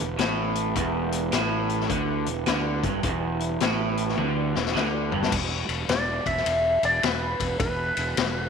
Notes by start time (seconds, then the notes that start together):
Already playing: B3 E4 G4 B4
0.00 E1 E2
0.19 A1 A2, snare, closed hi-hat
0.55 closed hi-hat
0.76 E1 E2 B3 E4 G4 B4, kick, closed hi-hat
1.12 closed hi-hat
1.32 A1 A2, snare, closed hi-hat
1.69 closed hi-hat
1.80 snare
1.90 D2 D3, kick, closed hi-hat
2.26 E1 E2, closed hi-hat
2.46 D2 D3, snare, closed hi-hat
2.83 G1 G2, kick, closed hi-hat
3.03 E1 E2 B3 E4 G4 B4, kick, closed hi-hat
3.40 closed hi-hat
3.60 A1 A2, snare, closed hi-hat
3.97 closed hi-hat
4.08 snare
4.17 D2 D3, high tom
4.55 E1 E2, snare
4.66 snare
4.75 D2 D3, snare
5.12 G1 G2, floor tom
5.22 snare
5.31 E1 D#4 G4 G#4 C5, kick, crash
5.50 D4 F#4 G4 B4
5.68 E1, ride
5.88 E1 D5, snare, ride
6.26 E1 E5, kick, ride
6.37 snare
6.46 E1, ride
6.83 E1 D5, ride
7.02 E1 B4, snare, ride
7.40 E1, kick, ride
7.59 E1 D4 F#4 G4 B4, kick, ride
7.97 E1, ride
8.17 E1, snare, ride